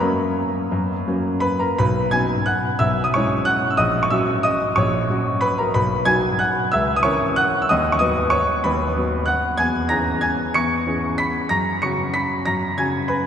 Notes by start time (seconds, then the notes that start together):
Already playing: F#2 B4 B5
0.00 F#3 A#3 C#4 A#4 A#5
0.72 F#2
1.08 F#3 A#3 C#4
1.40 B4 B5
1.60 A#4 A#5
1.78 B1 B4 B5
2.11 F#3 B3 D#4 G#5 G#6
2.46 F#5 F#6
2.79 B1 E5 E6
3.04 D#6
3.14 G#3 C#4 E4 C#5 C#6
3.45 F#5 F#6
3.70 E6
3.77 A#1 D#5 D#6
4.03 C#6
4.10 F#3 C#4 F#4 E5 E6
4.43 D#5 D#6
4.76 A#1 C#5 C#6
5.10 F#3 C#4 F#4
5.41 B4 B5
5.58 A#4 A#5
5.74 B1 B4 B5
6.05 F#3 D#4 F#4 G#5 G#6
6.39 F#5 F#6
6.72 C#2 E5 E6
6.96 D#6
7.03 E3 C#4 A#4 C#5 C#6
7.36 F#5 F#6
7.62 E6
7.69 D#2 D#5 D#6
7.92 C#6
7.99 F#3 B3 B4 D#5 D#6
8.30 C#5 C#6
8.64 D#2 B4 B5
8.96 F#3 B3 B4
9.26 F#5 F#6
9.57 E2 G#5 G#6
9.89 E3 C#4 G#4 A#5 A#6
10.21 G#5 G#6
10.54 E2 C#6 C#7
10.86 E3 C#4 G#4
11.18 B5 B6
11.49 F#2 A#5 A#6
11.82 C#3 C#4 F#4 C#6 C#7
12.14 B5 B6
12.46 F#2 A#5 A#6
12.78 C#3 C#4 F#4 G#5 G#6
13.08 B4 B5